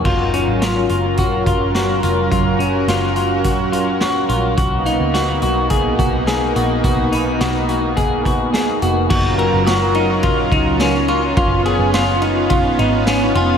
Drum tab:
CC |x-------|--------|--------|--------|
RD |--------|--------|--------|--------|
HH |-xxxxxxx|xxxxxxxx|xxxxxxxx|xxxxxxxx|
TB |--------|--------|--------|--------|
SD |--o---o-|--o---o-|--o---o-|--o---o-|
BD |o---oo--|o---o---|o---oo--|o---oo--|

CC |x-------|--------|
RD |-xxxxxxx|xxxxxxxx|
HH |--------|--------|
TB |--x---x-|--x---x-|
SD |--o---o-|--o---o-|
BD |o---oo--|o---o---|